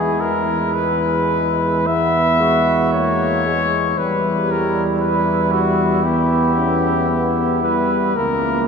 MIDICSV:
0, 0, Header, 1, 6, 480
1, 0, Start_track
1, 0, Tempo, 1096892
1, 822, Tempo, 1039861
1, 1792, Time_signature, 4, 2, 24, 8
1, 2742, Tempo, 1060071
1, 3937, End_track
2, 0, Start_track
2, 0, Title_t, "Cornet"
2, 0, Program_c, 0, 56
2, 0, Note_on_c, 0, 68, 61
2, 90, Note_on_c, 0, 70, 62
2, 97, Note_off_c, 0, 68, 0
2, 324, Note_on_c, 0, 71, 67
2, 331, Note_off_c, 0, 70, 0
2, 817, Note_on_c, 0, 76, 74
2, 824, Note_off_c, 0, 71, 0
2, 1303, Note_off_c, 0, 76, 0
2, 1306, Note_on_c, 0, 73, 75
2, 1791, Note_on_c, 0, 71, 59
2, 1798, Note_off_c, 0, 73, 0
2, 2037, Note_on_c, 0, 70, 62
2, 2044, Note_off_c, 0, 71, 0
2, 2187, Note_off_c, 0, 70, 0
2, 2266, Note_on_c, 0, 71, 63
2, 2501, Note_on_c, 0, 66, 63
2, 2508, Note_off_c, 0, 71, 0
2, 2738, Note_on_c, 0, 67, 61
2, 2745, Note_off_c, 0, 66, 0
2, 3459, Note_off_c, 0, 67, 0
2, 3463, Note_on_c, 0, 71, 61
2, 3705, Note_on_c, 0, 70, 67
2, 3712, Note_off_c, 0, 71, 0
2, 3937, Note_off_c, 0, 70, 0
2, 3937, End_track
3, 0, Start_track
3, 0, Title_t, "Flugelhorn"
3, 0, Program_c, 1, 56
3, 0, Note_on_c, 1, 64, 49
3, 803, Note_off_c, 1, 64, 0
3, 822, Note_on_c, 1, 64, 50
3, 1071, Note_on_c, 1, 66, 49
3, 1078, Note_off_c, 1, 64, 0
3, 1668, Note_off_c, 1, 66, 0
3, 1793, Note_on_c, 1, 64, 52
3, 3202, Note_off_c, 1, 64, 0
3, 3221, Note_on_c, 1, 64, 53
3, 3694, Note_off_c, 1, 64, 0
3, 3704, Note_on_c, 1, 64, 52
3, 3937, Note_off_c, 1, 64, 0
3, 3937, End_track
4, 0, Start_track
4, 0, Title_t, "Euphonium"
4, 0, Program_c, 2, 58
4, 0, Note_on_c, 2, 56, 59
4, 818, Note_on_c, 2, 59, 52
4, 825, Note_off_c, 2, 56, 0
4, 1063, Note_on_c, 2, 56, 50
4, 1070, Note_off_c, 2, 59, 0
4, 1664, Note_off_c, 2, 56, 0
4, 1792, Note_on_c, 2, 55, 63
4, 2742, Note_on_c, 2, 59, 60
4, 2748, Note_off_c, 2, 55, 0
4, 2976, Note_off_c, 2, 59, 0
4, 2979, Note_on_c, 2, 61, 59
4, 3217, Note_on_c, 2, 59, 52
4, 3224, Note_off_c, 2, 61, 0
4, 3457, Note_off_c, 2, 59, 0
4, 3460, Note_on_c, 2, 55, 51
4, 3699, Note_on_c, 2, 58, 63
4, 3706, Note_off_c, 2, 55, 0
4, 3937, Note_off_c, 2, 58, 0
4, 3937, End_track
5, 0, Start_track
5, 0, Title_t, "Trombone section"
5, 0, Program_c, 3, 61
5, 0, Note_on_c, 3, 52, 46
5, 257, Note_off_c, 3, 52, 0
5, 331, Note_on_c, 3, 56, 47
5, 812, Note_off_c, 3, 56, 0
5, 823, Note_on_c, 3, 59, 51
5, 1309, Note_off_c, 3, 59, 0
5, 1311, Note_on_c, 3, 58, 55
5, 1550, Note_off_c, 3, 58, 0
5, 1551, Note_on_c, 3, 56, 49
5, 1793, Note_off_c, 3, 56, 0
5, 1801, Note_on_c, 3, 55, 50
5, 2742, Note_on_c, 3, 59, 52
5, 2745, Note_off_c, 3, 55, 0
5, 3211, Note_off_c, 3, 59, 0
5, 3220, Note_on_c, 3, 59, 55
5, 3694, Note_off_c, 3, 59, 0
5, 3701, Note_on_c, 3, 58, 51
5, 3937, Note_off_c, 3, 58, 0
5, 3937, End_track
6, 0, Start_track
6, 0, Title_t, "Tuba"
6, 0, Program_c, 4, 58
6, 0, Note_on_c, 4, 40, 47
6, 1773, Note_off_c, 4, 40, 0
6, 1792, Note_on_c, 4, 40, 53
6, 3629, Note_off_c, 4, 40, 0
6, 3706, Note_on_c, 4, 37, 49
6, 3937, Note_off_c, 4, 37, 0
6, 3937, End_track
0, 0, End_of_file